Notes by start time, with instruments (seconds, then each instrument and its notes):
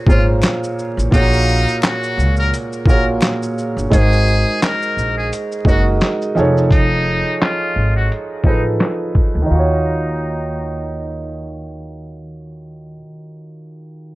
Already playing: felt piano A#2 A#3 G#4 C5 C#5
0.07 upright bass G#1, felt piano A#2 A#3 G#4 C5, muted trumpet F4, kick, shaker
0.11 felt piano C#5
0.42 finger snap, snare, clap, closed hi-hat, shaker
0.64 shaker
0.79 shaker
0.97 upright bass A1, shaker
1.11 upright bass A#1, felt piano A#2 A#3 F4 F#4 G#4, muted trumpet D#4, kick, closed hi-hat, shaker
1.15 felt piano C#5
1.33 shaker
1.49 shaker
1.68 shaker
1.82 muted trumpet F#4, finger snap, snare, clap, closed hi-hat, shaker
2.03 shaker
2.17 upright bass C#2, shaker
2.36 muted trumpet A#4, shaker
2.54 closed hi-hat, shaker
2.73 shaker
2.86 upright bass A#1, felt piano A#2 A#3 F4 F#4 G#4, muted trumpet A#4, kick, shaker
2.90 felt piano C#5
3.21 finger snap, snare, clap, closed hi-hat, shaker
3.43 shaker
3.58 shaker
3.77 upright bass G1, shaker
3.90 upright bass G#1, felt piano G#3 D#4 F#4 A#4, muted trumpet G#4, kick, closed hi-hat, shaker
3.95 felt piano C5
4.12 shaker
4.28 shaker
4.62 muted trumpet A#4, snare, clap, closed hi-hat, shaker
4.82 shaker
4.97 upright bass A#1, shaker
5.17 muted trumpet G#4
5.33 closed hi-hat, shaker
5.52 shaker
5.65 upright bass F#1, felt piano G#3 D#4 F#4 A#4, muted trumpet F#4, kick, shaker
5.69 felt piano D#5
6.01 snare, clap, closed hi-hat, shaker
6.22 shaker
6.35 upright bass F1, felt piano F3 D#4 G#4 A4, shaker
6.39 felt piano C#5
6.57 shaker
6.71 muted trumpet D#4, kick, closed hi-hat
7.41 muted trumpet F4, snare, clap, closed hi-hat
7.76 upright bass G#1
7.96 muted trumpet F#4
8.12 closed hi-hat
8.43 upright bass A1, felt piano F3 D#4 G#4 A4, muted trumpet D#4, kick
8.48 felt piano B4
8.80 snare, clap, closed hi-hat
9.15 kick
9.35 upright bass D2
9.42 felt piano D#3
9.46 felt piano D#4
9.50 upright bass D#2, muted trumpet D#4, felt piano F4
9.55 felt piano F#4
9.59 felt piano C#5